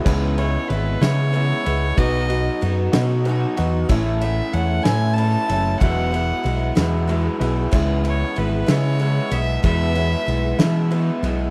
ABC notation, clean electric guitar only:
X:1
M:6/8
L:1/8
Q:3/8=63
K:E
V:1 name="Clean electric guitar"
[C,E,G,B,E] [G,B,E]2 [C,E,G,B,E] [E,G,B,E] [G,B,E] | [B,,F,B,DF] [B,DF]2 [B,,F,B,DF] [F,B,DF] [B,DF] | [A,,E,A,CE] [A,CE]2 [A,,E,A,CE] [E,A,CE] [A,CE] | [E,,B,,F,G,B,E] [F,G,B,E]2 [E,,B,,F,G,B,E] [F,G,B,E] [F,G,B,E] |
[C,E,G,B,E] [G,B,E]2 [C,E,G,B,E] [E,G,B,E] [G,B,E] | [E,,B,,E,G,B,E] [E,G,B,E]2 [E,,B,,E,G,B,E] [E,G,B,E] [E,G,B,E] |]